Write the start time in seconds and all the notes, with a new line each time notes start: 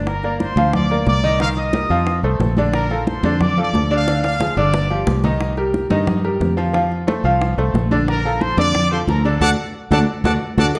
Already playing: G1
0.06 A#4 A#5, high bongo, high conga
0.23 A#3 A#4 D5, high bongo, high conga
0.40 C5 C6, high bongo, high conga
0.56 D2 F3 F4 F5, high conga
0.73 D5 D6, high bongo, high conga, low conga
0.90 A#3 A#4 D5, high bongo, high conga
1.06 C2 D5 D6, high bongo, low bongo, high conga
1.23 D#3 D#4 D#5, high bongo, high conga
1.40 D#3 D#4 D#5 F5, high bongo, high conga
1.57 D#5 D#6, high bongo, high conga
1.73 G3 G4 A#4, high bongo, high conga
1.90 F2 F3 F4 F5, high conga
2.06 high bongo, high conga
2.23 C2 A3 A4 C5, high bongo, high conga
2.40 A#1, high bongo, low bongo, high conga
2.57 D3 D4 D5, high bongo, high conga
2.73 A#4 A#5, high bongo, high conga
2.90 F3 F4 A4, high bongo, high conga
3.06 C5 C6, high bongo, high conga
3.23 F2 D3 D4 D5, high conga
3.39 D5 D6, high bongo, high conga, low conga
3.57 F3 F4 A4, high bongo, high conga
3.62 D5 D6
3.74 D2, high bongo, low bongo, high conga
3.91 D3 D4 D5, high bongo, high conga
3.95 F5
4.07 D3 D4 D5, high bongo
4.22 F5, high bongo, high conga
4.40 F3 F4 G#4, low bongo, high conga
4.56 G1 D3 D4 D5 D6, high bongo, high conga
4.74 low bongo, high conga
4.90 F3 F4 G4, high conga
5.07 C2, low bongo, high conga
5.24 D#3 D#4 D#5, low bongo, high conga
5.40 high bongo, high conga
5.57 G3 G4 A#4, high bongo, high conga
5.74 high bongo, high conga
5.90 G2 D#3 D#4 D#5, high conga
6.07 high bongo, high conga, low conga
6.24 G3 G4 A#4, high bongo, high conga
6.40 F2, high bongo, low bongo, high conga
6.57 F3 F4 F5, high bongo, high conga
6.73 F3 F4 F5, high bongo, high conga
6.92 high bongo, high conga
7.07 A3 A4 C5, high bongo, high conga
7.24 C2 F3 F4 F5, high conga
7.41 high bongo, high conga
7.58 C2 A3 A4 C5, high bongo, high conga
7.74 A#1, high bongo, low bongo, high conga
7.91 D3 D4 D5, high bongo, high conga
8.08 A#4 A#5, high bongo, high conga
8.25 F3 F4 A4, high bongo, high conga
8.41 C5 C6, high bongo, high conga
8.57 F2 D3 D4 D5 D6, high conga
8.74 high bongo, high conga, low conga
8.91 F3 F4 A4 C5 C6, high bongo, high conga
9.07 D2 A#4 A#5, high bongo, low bongo, high conga
9.25 D3 D4 A4 D5 A5, high bongo, high conga
9.41 D2 D4 F#4 A4 D5 F#5 A5, low bongo, high conga
9.91 D2 D4 F#4 A4 D5 F#5 A5, low bongo, high conga
10.24 D2 D4 F#4 A4 D5 F#5 A5, low bongo, high conga
10.57 D2 D4 F#4 A4 D5 F#5 A5, low bongo, high conga
10.75 D5, cowbell, high conga